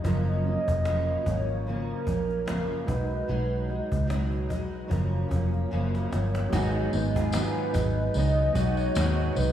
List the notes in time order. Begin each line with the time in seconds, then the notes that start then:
0.02 F#1 F#2 C#3 F3 F#3 A#3 C#4 F4 D#5, cajon bass
0.06 C#4 A#4
0.45 F3 A#3 C#4, cajon slap
0.68 F1, cajon bass
0.85 C#3 F3 A#3 C#4, cajon slap
1.25 G#1 F3 A#3 C#4 C#5, cajon bass
1.67 C#3 F3 A#3 C#4 A#4, cajon slap
2.06 A#1 F3 A#3 C#4, cajon bass
2.29 cajon slap
2.46 F#2 C#3 F3 A#3 C#4, cajon slap
2.85 B1 G#3 D#4 F#4 B4, cajon bass
2.90 F#3 B4
3.10 cajon slap
3.28 B1 B2 F#3 G#3 D#4, cajon slap
3.68 F#3 G#3 D#4, cajon slap
3.92 C#2, cajon bass
4.07 B2 F#3 G#3 D#4, cajon slap
4.31 cajon slap
4.49 B1 F#3 G#3 D#4, cajon bass
4.87 F#1 C#3 F3 F#3 A#3 C#4 F4, cajon bass
4.92 A#4
5.28 F1 F3 A#3 C#4, cajon bass
5.53 cajon slap
5.71 F#1 F#2 C#3 F3 A#3 C#4, cajon slap
5.95 cajon slap
6.11 G1 F3 A#3 C#4, cajon slap
6.35 cajon slap
6.49 G#1 G#2 D#3 F#3 G#3 B3 F#4, cajon bass, tambourine
6.53 D#4 G#4
6.92 G#1 F#3 B3 D#4 B4, cajon slap, tambourine
7.16 F4 G#4, cajon bass
7.32 G#2 D#3 F#3 B3 D#4, cajon slap, tambourine
7.73 G#1 F#3 B3 D#4, cajon bass, tambourine
8.14 C#2 D#3 F#3 B3 D#4 D#5, cajon slap, tambourine
8.54 B1 F#3 B3 D#4 F#4 C#5, cajon bass, tambourine
8.77 cajon slap, tambourine
8.95 D#2 G#2 D#3 F#3 G#3 B3 D#4 F#4 G#4, cajon slap, tambourine
9.35 C2 F#3 B3 D#4 B4, cajon slap, tambourine